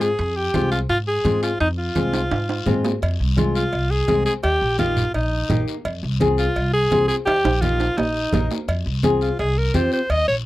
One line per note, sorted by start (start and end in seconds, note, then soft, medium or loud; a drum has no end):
0.00 0.12 G#2 medium
0.00 0.38 G#4 medium
0.00 high timbale medium
0.00 short guiro medium
0.19 0.47 F2 loud
0.19 high conga soft
0.19 high timbale medium
0.19 long guiro medium
0.36 0.71 G4 medium
0.54 0.82 C2 loud
0.54 0.79 G#3 medium
0.54 0.79 C4 medium
0.54 0.79 F4 medium
0.54 high conga medium
0.54 high timbale medium
0.54 short guiro medium
0.72 0.80 F4 medium
0.72 high timbale medium
0.72 short guiro medium
0.89 1.18 G#2 medium
0.89 0.98 F4 medium
0.89 high conga soft
0.89 high timbale medium
0.89 long guiro medium
1.08 1.41 G#4 medium
1.24 1.53 G#2 medium
1.24 1.50 G#3 medium
1.24 1.50 C4 medium
1.24 1.50 F4 medium
1.24 high conga medium
1.24 high timbale medium
1.24 short guiro medium
1.43 1.59 F4 medium
1.43 high timbale medium
1.43 short guiro medium
1.60 1.89 F2 loud
1.60 1.69 D#4 medium
1.60 high conga soft
1.60 high timbale medium
1.60 long guiro medium
1.78 2.80 F4 medium
1.95 2.24 C2 medium
1.95 2.20 G#3 medium
1.95 2.21 C4 medium
1.95 2.21 F4 medium
1.95 high conga medium
1.95 high timbale medium
1.95 short guiro medium
2.13 high timbale medium
2.13 short guiro medium
2.31 2.60 G#2 medium
2.31 high conga soft
2.31 high timbale loud
2.31 long guiro medium
2.49 high timbale medium
2.66 2.95 G#2 medium
2.66 2.91 G#3 medium
2.66 2.91 C4 medium
2.66 2.92 F4 loud
2.66 high conga medium
2.66 low conga medium
2.66 low timbale medium
2.66 short guiro medium
2.85 low timbale loud
2.85 short guiro medium
3.02 3.17 F2 loud
3.02 cowbell loud
3.02 high conga soft
3.02 long guiro medium
3.20 3.62 C2 loud
3.37 3.62 G#3 medium
3.37 3.62 C4 medium
3.37 3.62 F4 medium
3.37 cowbell medium
3.37 high conga medium
3.37 short guiro medium
3.55 3.92 F4 medium
3.55 short guiro medium
3.73 4.01 C2 medium
3.73 cowbell medium
3.73 high conga soft
3.73 long guiro medium
3.91 4.25 G#4 loud
4.08 4.23 C2 medium
4.08 4.33 G#3 medium
4.08 4.33 C4 medium
4.08 4.33 G#4 medium
4.08 cowbell medium
4.08 high conga medium
4.08 short guiro medium
4.26 4.34 G#4 medium
4.26 short guiro medium
4.43 4.58 D#2 medium
4.43 4.77 G4 loud
4.43 cowbell loud
4.43 high conga soft
4.43 long guiro medium
4.61 5.04 A#1 loud
4.78 5.03 A#3 medium
4.78 5.04 D#4 medium
4.78 5.12 F4 medium
4.78 5.04 G4 medium
4.78 cowbell medium
4.78 high conga medium
4.78 short guiro medium
4.97 low conga medium
4.97 short guiro medium
5.14 5.43 A#1 medium
5.14 5.64 D#4 medium
5.14 cowbell medium
5.14 high conga soft
5.14 long guiro medium
5.49 5.64 A#1 medium
5.49 5.74 A#3 medium
5.49 5.75 D#4 medium
5.49 5.75 G4 medium
5.49 cowbell medium
5.49 high conga medium
5.49 low conga medium
5.49 low timbale medium
5.49 short guiro medium
5.68 short guiro medium
5.85 5.99 F2 loud
5.85 cowbell loud
5.85 high conga soft
5.85 long guiro medium
6.03 6.46 C2 loud
6.20 6.45 C4 medium
6.20 6.45 F4 medium
6.20 6.46 G#4 loud
6.20 cowbell medium
6.20 high conga medium
6.20 short guiro medium
6.38 6.72 F4 medium
6.38 short guiro medium
6.56 6.85 C2 medium
6.56 cowbell medium
6.56 high conga soft
6.56 long guiro medium
6.73 7.07 G#4 loud
6.91 7.06 C2 medium
6.91 7.16 C4 medium
6.91 7.16 F4 medium
6.91 7.16 G#4 medium
6.91 cowbell medium
6.91 high conga medium
6.91 low timbale medium
6.91 short guiro medium
7.08 7.16 G#4 medium
7.08 short guiro medium
7.26 7.41 D#2 medium
7.26 7.63 G4 loud
7.26 cowbell loud
7.26 high conga soft
7.26 high timbale medium
7.26 long guiro medium
7.44 7.87 A#1 loud
7.44 high timbale medium
7.61 7.87 A#3 medium
7.61 7.87 D#4 medium
7.61 7.99 F4 medium
7.61 7.87 G4 medium
7.61 cowbell medium
7.61 high conga medium
7.61 short guiro medium
7.80 high timbale medium
7.80 short guiro medium
7.97 8.26 A#1 medium
7.97 8.50 D#4 medium
7.97 cowbell medium
7.97 high conga soft
7.97 low timbale loud
7.97 long guiro medium
8.32 8.47 A#1 medium
8.32 8.57 A#3 medium
8.32 8.58 D#4 medium
8.32 8.58 A#4 medium
8.32 cowbell medium
8.32 high conga medium
8.32 low conga medium
8.32 low timbale medium
8.32 short guiro medium
8.51 low timbale medium
8.51 short guiro medium
8.68 8.82 F2 medium
8.68 cowbell loud
8.68 high conga soft
8.68 long guiro medium
8.86 9.28 C2 loud
9.03 9.28 C4 medium
9.03 9.29 F4 medium
9.03 9.29 G#4 medium
9.03 cowbell medium
9.03 high conga medium
9.03 short guiro medium
9.21 9.38 F4 medium
9.21 short guiro medium
9.39 9.68 C2 medium
9.39 9.59 G#4 medium
9.39 cowbell medium
9.39 high conga soft
9.39 long guiro medium
9.58 9.75 A#4 medium
9.74 9.89 F2 medium
9.74 9.99 C4 medium
9.74 9.99 F4 medium
9.74 9.99 G4 medium
9.74 9.91 C5 medium
9.74 cowbell medium
9.74 high conga medium
9.74 short guiro medium
9.92 10.12 C5 medium
9.92 short guiro medium
10.10 10.24 D#2 medium
10.10 10.27 D#5 loud
10.10 cowbell loud
10.10 high conga soft
10.10 long guiro medium
10.28 10.46 A#1 medium
10.28 10.36 C#5 medium